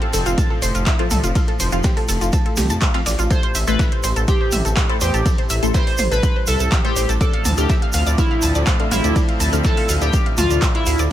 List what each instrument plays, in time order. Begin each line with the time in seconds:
Already playing: synth drone A2, synth stab F3 C4 F4, string section F3 A3 C4
0.02 synth arpeggio sound A4 A5, closed hi-hat
0.13 detuned saw bass F1, synth arpeggio sound A4 A5, snare, open hi-hat, ride, shaker
0.26 detuned saw bass F1, synth arpeggio sound F4 F5, closed hi-hat, shaker
0.38 synth arpeggio sound A5 A6, kick, closed hi-hat, mid tom, ride, shaker
0.50 synth arpeggio sound A4 A5
0.62 detuned saw bass F1, synth arpeggio sound C5 C6, open hi-hat, ride, shaker
0.75 detuned saw bass F1, synth arpeggio sound F4 F5, closed hi-hat, shaker
0.86 synth arpeggio sound E4 E5, kick, snare, clap, closed hi-hat, ride, shaker
0.99 synth stab F3 C4 F4, synth arpeggio sound A4 A5, closed hi-hat
1.11 detuned saw bass C2, synth arpeggio sound A4 A5, mid tom, open hi-hat, ride, shaker
1.24 detuned saw bass F1, synth arpeggio sound F4 F5, closed hi-hat, ride, shaker
1.35 synth arpeggio sound F4 F5, kick, closed hi-hat, open hi-hat, shaker
1.48 synth arpeggio sound A4 A5, closed hi-hat
1.60 detuned saw bass F1, synth arpeggio sound C5 C6, open hi-hat, ride, shaker
1.72 detuned saw bass F1, synth stab F3 C4 F4, synth arpeggio sound F4 F5, closed hi-hat, shaker
1.83 synth arpeggio sound G4 G5, kick, snare, closed hi-hat, mid tom, ride, shaker
1.97 synth arpeggio sound A4 A5, open hi-hat, ride
2.08 detuned saw bass F1, synth arpeggio sound A4 A5, open hi-hat, ride, shaker
2.21 detuned saw bass F1, synth arpeggio sound F4 F5, closed hi-hat, shaker
2.33 synth arpeggio sound A5 A6, kick, closed hi-hat, ride, shaker
2.46 synth arpeggio sound A4 A5, closed hi-hat
2.57 detuned saw bass C2, synth arpeggio sound G4 G5, snare, mid tom, open hi-hat, ride, shaker
2.70 detuned saw bass F2, synth arpeggio sound A5 A6, closed hi-hat, ride, shaker
2.81 synth arpeggio sound F4 F5, kick, clap, closed hi-hat, ride, shaker
2.94 synth stab F3 C4 F4, synth arpeggio sound F5 F6, snare, closed hi-hat, ride
3.06 detuned saw bass A1, synth arpeggio sound D5 D6, snare, open hi-hat, ride, shaker
3.19 detuned saw bass A1, synth arpeggio sound F4 F5, closed hi-hat, shaker
3.30 synth drone A2, string section C3, synth arpeggio sound A4 A5, analog polysynth C5, synth bell C5, kick, closed hi-hat, ride, shaker
3.43 synth arpeggio sound C5 C6, closed hi-hat, ride
3.55 detuned saw bass A1, synth arpeggio sound E5 E6, open hi-hat, ride, shaker
3.67 detuned saw bass A1, synth stab A3 E4 A4, analog polysynth B4, synth bell B4, synth arpeggio sound C6, snare, closed hi-hat, shaker
3.79 synth arpeggio sound B4 B5, kick, snare, closed hi-hat, mid tom, ride, shaker
3.92 synth arpeggio sound C5 C6, closed hi-hat
4.03 detuned saw bass A1, synth arpeggio sound C5 C6, snare, open hi-hat, ride, shaker
4.16 detuned saw bass A1, synth arpeggio sound A4 A5, closed hi-hat, shaker
4.28 synth bell G4, analog polysynth G4, synth arpeggio sound C6, kick, closed hi-hat, ride, shaker
4.41 synth arpeggio sound C5 C6
4.52 detuned saw bass A1, synth arpeggio sound E5 E6, mid tom, open hi-hat, ride, shaker
4.65 detuned saw bass A1, synth arpeggio sound A4 A5, closed hi-hat, shaker
4.77 synth arpeggio sound G4 G5, kick, snare, clap, closed hi-hat, ride, shaker
4.89 synth stab A3 E4 A4, synth arpeggio sound C5 C6, closed hi-hat
5.01 detuned saw bass E2, analog polysynth G4, synth bell G4, synth arpeggio sound C5 C6, open hi-hat, ride, shaker
5.14 detuned saw bass A1, synth arpeggio sound A4 A5, closed hi-hat, ride, shaker
5.26 string section G3, synth arpeggio sound A4 A5, kick, closed hi-hat, mid tom, open hi-hat, shaker
5.38 synth arpeggio sound C5 C6, closed hi-hat
5.50 detuned saw bass A1, synth arpeggio sound E5 E6, open hi-hat, ride, shaker
5.63 detuned saw bass A1, synth stab A3 E4 A4, synth arpeggio sound C6, closed hi-hat, shaker
5.74 synth arpeggio sound B4 B5, synth bell C5, analog polysynth C5, kick, snare, closed hi-hat, ride, shaker
5.87 synth arpeggio sound C5 C6, open hi-hat, ride
5.98 detuned saw bass A1, synth arpeggio sound C5 C6, mid tom, open hi-hat, ride, shaker
6.11 detuned saw bass A1, synth arpeggio sound A4 A5, analog polysynth B4, synth bell B4, closed hi-hat, shaker
6.23 synth arpeggio sound C6, kick, closed hi-hat, ride, shaker
6.36 synth arpeggio sound C5 C6
6.47 detuned saw bass C2, synth bell A4, analog polysynth A4, synth arpeggio sound E5 E6, open hi-hat, ride, shaker
6.60 detuned saw bass C2, synth arpeggio sound A4 A5, closed hi-hat, shaker
6.72 synth arpeggio sound G4 G5, kick, snare, clap, closed hi-hat, mid tom, ride, shaker
6.84 synth stab A3 E4 A4, analog polysynth G4, synth bell G4, synth arpeggio sound C5 C6, closed hi-hat
6.96 detuned saw bass A1, synth arpeggio sound C5 C6, open hi-hat, ride, shaker
7.09 detuned saw bass A1, synth arpeggio sound A4 A5, snare, closed hi-hat, shaker
7.21 string section D3 F3 A3 C4 E4, synth bell A4, analog polysynth A4, synth arpeggio sound D5 D6, kick, closed hi-hat, ride, shaker
7.33 synth arpeggio sound F5 F6, closed hi-hat, ride
7.45 detuned saw bass D2, synth arpeggio sound A5 A6, mid tom, open hi-hat, ride, shaker
7.57 detuned saw bass D2, synth stab D3 A3 D4, analog polysynth G4, synth bell G4, synth arpeggio sound F6, snare, closed hi-hat, shaker
7.69 synth arpeggio sound E5 E6, kick, snare, closed hi-hat, ride, shaker
7.82 synth arpeggio sound F5 F6, closed hi-hat
7.93 detuned saw bass D2, synth arpeggio sound F5 F6, snare, open hi-hat, ride, shaker
8.06 detuned saw bass D2, synth arpeggio sound D5 D6, closed hi-hat, shaker
8.18 synth bell E4, analog polysynth E4, synth arpeggio sound F6, kick, closed hi-hat, mid tom, ride, shaker
8.31 synth arpeggio sound F5 F6
8.42 detuned saw bass D2, synth arpeggio sound A5 A6, open hi-hat, ride, shaker
8.55 detuned saw bass D2, synth arpeggio sound D5 D6, closed hi-hat, shaker
8.66 synth arpeggio sound C5 C6, kick, snare, clap, closed hi-hat, ride, shaker
8.80 synth stab D3 A3 D4, synth arpeggio sound F5 F6, closed hi-hat
8.91 detuned saw bass A1, analog polysynth E4, synth bell E4, synth arpeggio sound F5 F6, mid tom, open hi-hat, ride, shaker
9.04 detuned saw bass D2, synth arpeggio sound D5 D6, closed hi-hat, ride, shaker
9.16 synth arpeggio sound D5 D6, kick, closed hi-hat, open hi-hat, shaker
9.28 synth arpeggio sound F5 F6, closed hi-hat
9.40 detuned saw bass D2, synth arpeggio sound A5 A6, open hi-hat, ride, shaker
9.53 detuned saw bass D2, synth stab D3 A3 D4, synth arpeggio sound F6, closed hi-hat, shaker
9.64 synth bell A4, analog polysynth A4, synth arpeggio sound E5 E6, kick, snare, closed hi-hat, mid tom, ride, shaker
9.77 synth arpeggio sound F5 F6, open hi-hat, ride
9.89 detuned saw bass D2, synth arpeggio sound F5 F6, open hi-hat, ride, shaker
10.01 detuned saw bass D2, analog polysynth G4, synth bell G4, synth arpeggio sound D5 D6, closed hi-hat, shaker
10.13 synth arpeggio sound F6, kick, closed hi-hat, ride, shaker
10.26 synth arpeggio sound F5 F6, closed hi-hat
10.38 detuned saw bass D2, synth bell F4, analog polysynth F4, synth arpeggio sound A5 A6, mid tom, open hi-hat, ride, shaker
10.50 detuned saw bass D2, synth arpeggio sound D5 D6, closed hi-hat, shaker
10.62 synth arpeggio sound C5 C6, kick, snare, clap, closed hi-hat, ride, shaker
10.75 synth bell E4, analog polysynth E4, synth arpeggio sound F5 F6, closed hi-hat
10.86 detuned saw bass D2, synth arpeggio sound F5 F6, open hi-hat, ride, shaker
10.99 detuned saw bass D2, synth arpeggio sound D5 D6, snare, closed hi-hat, shaker